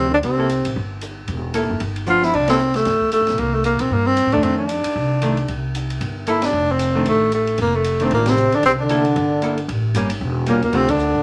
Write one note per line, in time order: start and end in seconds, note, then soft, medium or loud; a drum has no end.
0.00 0.21 D2 medium
0.00 0.11 C3 medium
0.00 0.10 B3 medium
0.00 0.13 C4 medium
0.00 0.10 E4 medium
0.11 0.16 D3 medium
0.11 0.18 D4 medium
0.22 0.62 C2 medium
0.22 0.72 C3 medium
0.22 0.73 C4 medium
0.22 kick soft
0.22 ride medium
0.38 0.48 A#3 soft
0.38 0.49 E4 medium
0.38 0.49 A4 medium
0.49 hi-hat pedal soft
0.49 ride medium
0.65 0.75 A#1 medium
0.65 ride medium
0.76 1.26 G1 medium
0.76 kick soft
1.01 hi-hat pedal medium
1.01 ride soft
1.28 1.67 E1 medium
1.28 kick soft
1.28 ride soft
1.54 1.81 A#3 medium
1.54 1.81 E4 medium
1.54 1.81 A4 medium
1.54 hi-hat pedal soft
1.54 ride medium
1.70 1.80 F#1 medium
1.80 2.31 G1 medium
1.80 kick soft
1.80 ride medium
1.96 ride soft
2.06 2.33 F3 medium
2.06 2.34 B3 medium
2.06 2.34 D4 medium
2.06 2.26 F4 medium
2.06 hi-hat pedal soft
2.22 2.36 E4 medium
2.22 snare medium
2.33 2.83 C2 medium
2.33 2.49 D4 medium
2.33 kick medium
2.33 crash medium
2.48 2.59 A#3 medium
2.48 2.77 C4 medium
2.48 2.59 E4 medium
2.48 2.59 A4 medium
2.48 snare medium
2.48 ride medium
2.59 hi-hat pedal soft
2.74 3.12 A3 medium
2.74 snare soft
2.74 ride soft
2.85 3.19 G1 medium
2.85 kick soft
2.85 snare soft
2.85 ride medium
3.01 kick medium
3.12 3.41 A3 medium
3.12 hi-hat pedal medium
3.12 ride medium
3.21 3.29 A1 medium
3.27 3.38 A#1 medium
3.27 snare soft
3.27 ride soft
3.38 3.77 C2 medium
3.38 3.55 A#3 medium
3.38 kick soft
3.38 ride soft
3.54 3.65 A3 medium
3.64 3.82 A#3 medium
3.64 hi-hat pedal medium
3.64 ride medium
3.79 3.90 B1 medium
3.79 3.94 C4 medium
3.79 ride medium
3.90 4.23 G2 medium
3.90 4.08 A#3 medium
3.90 kick soft
4.07 4.35 C4 medium
4.17 hi-hat pedal soft
4.17 ride medium
4.26 4.34 A2 medium
4.32 4.43 E2 medium
4.32 4.68 D#3 medium
4.32 4.68 A3 medium
4.32 4.45 D4 medium
4.32 4.68 D4 medium
4.32 ride soft
4.43 4.82 F2 medium
4.43 4.57 C4 medium
4.43 kick soft
4.43 ride medium
4.58 5.59 D4 medium
4.69 hi-hat pedal soft
4.69 ride medium
4.84 muted upright bass stroke soft
4.84 ride medium
4.96 5.46 C2 medium
4.96 kick soft
5.22 5.36 D#3 medium
5.22 5.36 A3 medium
5.22 5.36 D4 medium
5.22 hi-hat pedal soft
5.22 ride medium
5.37 ride soft
5.48 5.98 C2 medium
5.48 kick soft
5.48 ride medium
5.75 hi-hat pedal soft
5.75 ride medium
5.90 ride soft
6.01 6.51 G1 medium
6.01 kick soft
6.01 ride medium
6.27 6.41 A#3 medium
6.27 6.41 E4 medium
6.27 6.46 E4 medium
6.27 6.42 A4 medium
6.27 hi-hat pedal medium
6.27 ride soft
6.42 6.73 D4 medium
6.42 snare medium
6.42 ride medium
6.53 7.03 F1 medium
6.72 7.07 C4 medium
6.79 hi-hat pedal medium
6.79 ride medium
6.95 7.30 D#3 medium
6.95 7.30 A3 medium
6.95 7.31 D4 medium
7.06 7.56 A1 medium
7.06 7.32 A3 medium
7.06 kick soft
7.06 ride medium
7.32 7.58 A3 medium
7.32 hi-hat pedal soft
7.32 ride medium
7.47 ride soft
7.58 8.08 F1 medium
7.58 7.77 A#3 medium
7.58 kick soft
7.58 ride medium
7.76 8.05 A3 medium
7.84 hi-hat pedal soft
7.84 ride medium
8.00 8.35 D#3 medium
8.00 8.36 A3 medium
8.00 8.36 D4 medium
8.00 ride soft
8.04 8.13 C4 medium
8.11 8.50 A1 medium
8.11 8.31 A#2 medium
8.11 8.31 A#3 medium
8.11 kick soft
8.11 ride medium
8.26 8.57 C3 medium
8.26 8.57 C4 medium
8.26 snare medium
8.26 ride medium
8.37 hi-hat pedal soft
8.52 8.65 D3 medium
8.52 8.65 D4 medium
8.52 muted upright bass stroke soft
8.52 ride soft
8.63 9.13 C2 medium
8.63 8.73 C3 medium
8.63 8.72 C4 medium
8.63 kick soft
8.63 ride medium
8.80 9.66 D3 medium
8.80 9.65 D4 medium
8.89 9.03 A#3 medium
8.89 9.04 E4 medium
8.89 9.04 A4 medium
8.89 hi-hat pedal medium
8.89 ride medium
9.05 ride soft
9.16 9.66 G1 medium
9.16 kick soft
9.16 ride medium
9.42 9.56 A#3 medium
9.42 9.57 E4 soft
9.42 9.57 A4 medium
9.42 hi-hat pedal soft
9.42 ride medium
9.58 ride soft
9.68 9.93 A1 medium
9.68 kick soft
9.68 ride medium
9.95 10.19 G1 medium
9.95 10.09 G3 medium
9.95 10.10 A#3 medium
9.95 10.10 C#4 medium
9.95 hi-hat pedal medium
9.95 ride medium
10.10 ride medium
10.21 10.60 E1 medium
10.21 kick soft
10.46 10.62 A#2 medium
10.46 10.61 G3 medium
10.46 10.62 A#3 medium
10.46 10.63 A#3 medium
10.46 10.62 C#4 medium
10.46 hi-hat pedal soft
10.46 ride medium
10.62 10.72 D#2 medium
10.62 10.75 A#2 medium
10.62 10.77 A#3 medium
10.62 ride soft
10.73 11.12 D2 medium
10.73 10.90 C3 medium
10.73 10.87 D3 medium
10.73 10.87 A3 medium
10.73 10.88 C4 medium
10.73 10.92 C4 medium
10.73 10.88 F4 medium
10.73 kick soft
10.73 ride medium
10.88 11.23 D3 medium
10.88 11.23 D4 medium
10.88 kick medium
10.88 ride medium
10.99 hi-hat pedal medium
11.15 11.23 A2 medium